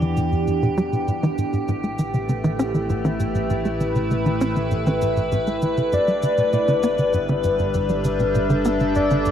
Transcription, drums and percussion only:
0.02 high conga, cabasa
0.17 cabasa
0.32 cabasa
0.47 cabasa
0.62 cabasa
0.78 high conga, cabasa
0.93 cabasa
1.08 cabasa
1.23 cabasa
1.38 cabasa
1.53 high conga, cabasa
1.68 cabasa
1.84 cabasa
1.99 cabasa
2.14 cabasa
2.29 high conga, cabasa
2.44 cabasa
2.59 cabasa
2.75 cabasa
2.90 cabasa
3.05 high conga, cabasa
3.20 cabasa
3.35 cabasa
3.50 cabasa
3.65 cabasa
3.81 high conga, cabasa
3.96 cabasa
4.11 cabasa
4.26 cabasa
4.41 cabasa
4.56 high conga, cabasa
4.71 cabasa
4.86 cabasa
5.01 cabasa
5.17 cabasa
5.32 high conga, cabasa
5.47 cabasa
5.62 cabasa
5.77 cabasa
5.92 high conga, cabasa
6.07 cabasa
6.23 cabasa
6.38 cabasa
6.53 cabasa
6.68 high conga, cabasa
6.83 cabasa
6.98 cabasa
7.13 cabasa
7.28 cabasa
7.44 high conga, cabasa
7.59 cabasa
7.74 cabasa
7.89 cabasa
8.04 cabasa
8.20 high conga, cabasa
8.35 cabasa
8.50 cabasa
8.65 cabasa
8.80 cabasa
8.95 high conga, cabasa
9.10 cabasa
9.25 cabasa

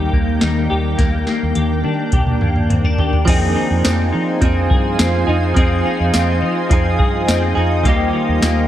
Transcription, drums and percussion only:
0.13 kick
0.41 snare, closed hi-hat
0.99 kick, snare, closed hi-hat
1.27 snare
1.55 closed hi-hat, high tom
1.84 high tom
2.12 kick, closed hi-hat, mid tom
2.27 mid tom
2.41 mid tom
2.56 mid tom
2.70 closed hi-hat, mid tom
2.85 floor tom
2.98 floor tom
3.13 floor tom
3.28 kick, closed hi-hat, crash
3.85 snare, closed hi-hat, tambourine
4.42 kick, closed hi-hat
4.71 kick
4.99 snare, closed hi-hat, tambourine
5.57 kick, closed hi-hat
6.14 snare, closed hi-hat, tambourine
6.71 kick, closed hi-hat
7.00 kick
7.28 snare, closed hi-hat, tambourine
7.85 kick, closed hi-hat
8.42 snare, closed hi-hat, tambourine

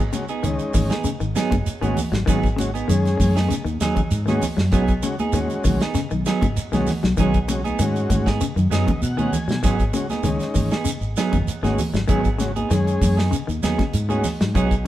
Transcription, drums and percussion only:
0.13 closed hi-hat, high conga, shekere
0.28 closed hi-hat, shekere
0.44 closed hi-hat, shekere
0.59 closed hi-hat, shekere
0.74 kick, open hi-hat, high conga, low conga, shekere
0.90 snare, closed hi-hat, shekere
1.04 closed hi-hat, shekere
1.21 shekere
1.36 snare, closed hi-hat, shekere
1.51 kick, closed hi-hat, high conga, shekere
1.66 closed hi-hat, shekere
1.82 closed hi-hat, high conga, shekere
1.97 open hi-hat, high conga, low conga, shekere
2.13 snare, closed hi-hat, shekere
2.27 kick, closed hi-hat, shekere
2.43 kick, closed hi-hat, shekere
2.58 closed hi-hat, high conga, shekere
2.75 closed hi-hat, shekere
2.89 closed hi-hat, shekere
3.05 snare, closed hi-hat, shekere
3.20 kick, open hi-hat, high conga, low conga, shekere
3.37 snare, shekere
3.51 closed hi-hat, shekere
3.66 closed hi-hat, shekere
3.80 snare, closed hi-hat, shekere
3.96 kick, closed hi-hat, high conga, low conga, shekere
4.11 closed hi-hat, shekere
4.28 snare, high conga, shekere
4.41 open hi-hat, low conga, shekere
4.58 snare, shekere
4.72 kick, snare, closed hi-hat, shekere
4.88 kick, closed hi-hat, shekere
5.03 closed hi-hat, high conga, shekere
5.19 closed hi-hat, high conga, shekere
5.33 closed hi-hat, shekere
5.50 closed hi-hat, shekere
5.64 kick, open hi-hat, high conga, low conga, shekere
5.81 snare, closed hi-hat, shekere
5.95 snare, closed hi-hat, shekere
6.11 shekere
6.26 snare, closed hi-hat, shekere
6.41 kick, closed hi-hat, high conga, shekere
6.57 closed hi-hat, shekere
6.73 snare, closed hi-hat, high conga, shekere
6.87 snare, open hi-hat, low conga, shekere
7.03 snare, closed hi-hat, shekere
7.17 kick, closed hi-hat, shekere
7.34 kick, closed hi-hat, shekere
7.49 closed hi-hat, high conga, shekere
7.65 closed hi-hat, high conga, shekere
7.79 closed hi-hat, shekere
7.96 closed hi-hat, shekere
8.10 kick, closed hi-hat, high conga, low conga, shekere
8.26 kick, snare, shekere
8.41 closed hi-hat, shekere
8.57 closed hi-hat, shekere
8.72 snare, closed hi-hat, shekere
8.88 kick, closed hi-hat, high conga, low conga, shekere
9.02 closed hi-hat, shekere
9.19 high conga, shekere
9.33 closed hi-hat, low conga, shekere
9.49 snare, shekere
9.64 kick, snare, closed hi-hat, shekere
9.79 kick, closed hi-hat, shekere
9.94 closed hi-hat, high conga, shekere
10.10 snare, closed hi-hat, high conga, shekere
10.23 closed hi-hat, shekere
10.40 snare, closed hi-hat, shekere
10.55 kick, open hi-hat, high conga, low conga, shekere
10.71 snare, closed hi-hat, shekere
10.85 closed hi-hat, shekere
11.02 shekere
11.17 snare, closed hi-hat, shekere
11.33 kick, closed hi-hat, high conga, low conga, shekere
11.48 closed hi-hat, shekere
11.64 snare, closed hi-hat, high conga, shekere
11.79 open hi-hat, low conga, shekere
11.94 snare, closed hi-hat, shekere
12.08 kick, closed hi-hat, shekere
12.24 kick, closed hi-hat, shekere
12.39 snare, closed hi-hat, high conga, shekere
12.56 closed hi-hat, high conga, shekere
12.71 snare, closed hi-hat, shekere
12.87 closed hi-hat, shekere
13.01 kick, open hi-hat, high conga, low conga, shekere
13.19 snare, shekere
13.32 closed hi-hat, shekere
13.49 closed hi-hat, shekere
13.63 snare, closed hi-hat, shekere
13.79 kick, snare, closed hi-hat, high conga, shekere
13.93 closed hi-hat, shekere
14.10 high conga, shekere
14.24 snare, open hi-hat, low conga, shekere
14.41 snare, shekere
14.55 kick, closed hi-hat, shekere
14.71 kick, closed hi-hat, shekere

